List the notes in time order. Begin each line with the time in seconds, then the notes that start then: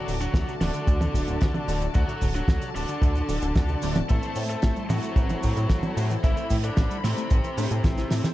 Already playing: D3 F#3 A3 D4 F#4 A4 D5 A5
0.08 D1 D3, open hi-hat, cabasa
0.21 F#3 D4 F#4, closed hi-hat, cabasa
0.34 D2 D3, kick, snare, closed hi-hat, cabasa
0.47 C3, closed hi-hat, cabasa
0.61 D1 D3 D4, snare, open hi-hat, high tom, cabasa
0.74 D3, closed hi-hat, cabasa
0.87 D2 A3, kick, closed hi-hat, cabasa
1.01 A2, closed hi-hat, high tom, cabasa
1.14 D1 D3, kick, open hi-hat, cabasa
1.28 D1 D4, closed hi-hat, cabasa
1.41 D2 D3, kick, snare, closed hi-hat, cabasa
1.54 C3, high tom, cabasa
1.68 D1 D3 A3 D4 F#4 D5, open hi-hat, cabasa
1.81 A2, closed hi-hat, cabasa
1.94 D2 D3 F#3 A3 D4 F#4 D5, kick, closed hi-hat, cabasa
2.08 A2, closed hi-hat, cabasa
2.21 D1 D3, kick, open hi-hat, cabasa
2.35 F#3 D4 F#4, closed hi-hat, cabasa
2.48 D2 D3, kick, snare, closed hi-hat, cabasa
2.62 C3, closed hi-hat, cabasa
2.75 D1 D3 D4, open hi-hat, cabasa
2.88 D3, closed hi-hat, cabasa
3.02 D2 A3, kick, closed hi-hat, cabasa
3.15 A2, closed hi-hat, cabasa
3.29 D1 D3, open hi-hat, cabasa
3.42 D1 D4, closed hi-hat, cabasa
3.55 D2 D3, kick, snare, closed hi-hat, cabasa
3.69 C3, cabasa
3.82 D1 A2 D3 A3 D4 F#4 D5, open hi-hat, cabasa
3.95 A2, closed hi-hat, high tom, cabasa
4.09 A1 A2 A3 C4 E4 A4 C5, kick, closed hi-hat, cabasa
4.23 E3, closed hi-hat, cabasa
4.36 A2 A3, open hi-hat, cabasa
4.49 A3 A4, closed hi-hat, cabasa
4.62 A1 A3, kick, snare, closed hi-hat, cabasa
4.76 G3, closed hi-hat, cabasa
4.89 A2 F#3 A3 F#4, open hi-hat, high tom, cabasa
5.03 A3, closed hi-hat, cabasa
5.16 A1 E4, kick, closed hi-hat, cabasa
5.29 E3, closed hi-hat, high tom, cabasa
5.43 A2 A3, kick, open hi-hat, cabasa
5.57 A2 A4, closed hi-hat, cabasa
5.69 A1 A3, kick, snare, closed hi-hat, cabasa
5.83 G3, high tom, cabasa
5.97 A2 A3 C4 E4 C5, open hi-hat, cabasa
6.10 E3, closed hi-hat, cabasa
6.24 A1 A2 E3 A3 C4 E4 C5 B5, kick, closed hi-hat, cabasa
6.37 E3, closed hi-hat, cabasa
6.50 A2 A3, kick, open hi-hat, cabasa
6.64 D3 D4 A4, closed hi-hat, cabasa
6.77 A1 A3, kick, snare, closed hi-hat, cabasa
6.91 G3, closed hi-hat, cabasa
7.04 A2 C3 A3 C4, snare, open hi-hat, cabasa
7.17 A3, closed hi-hat, cabasa
7.30 A1 E4, kick, closed hi-hat, cabasa
7.44 E3, closed hi-hat, cabasa
7.57 A2 A3 C4 D4 E4 C5, open hi-hat, cabasa
7.71 A2 A3, closed hi-hat, cabasa
7.84 A1 E4, kick, snare, closed hi-hat, cabasa
7.97 E4, snare, closed hi-hat, cabasa
8.10 A2 A3, snare, open hi-hat, cabasa
8.24 C4, snare, closed hi-hat, high tom, cabasa